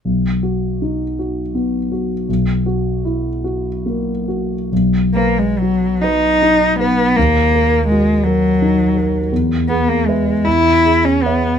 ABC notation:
X:1
M:6/8
L:1/16
Q:3/8=52
K:B
V:1 name="Grand piano"
B,,,2 F2 D2 F2 B,2 F2 | B,,,2 F2 E2 F2 A,2 F2 | B,,,2 B2 F2 B2 D2 B2 | D,,2 A2 F2 A2 D2 A2 |
E,,2 G2 [Be]2 E,,2 G2 [ce]2 |]
V:2 name="Cello"
z12 | z12 | z2 A, G, F,2 D4 B,2 | A,4 G,2 F,6 |
z2 B, A, G,2 E3 C B,2 |]